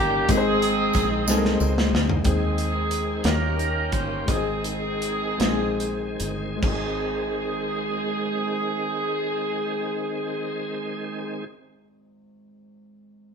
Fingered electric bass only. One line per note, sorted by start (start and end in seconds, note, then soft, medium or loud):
0.00 0.27 G1 medium
0.29 0.90 G#1 medium
0.95 1.28 A#1 medium
1.28 1.58 C2 medium
1.61 1.90 C#2 loud
1.93 2.23 D2 medium
2.25 3.21 D#2 medium
3.25 3.89 D#2 medium
3.93 4.25 G1 medium
4.28 5.36 G#1 medium
5.40 6.16 A#1 medium
6.20 6.59 G1 medium
6.63 11.44 G#1 medium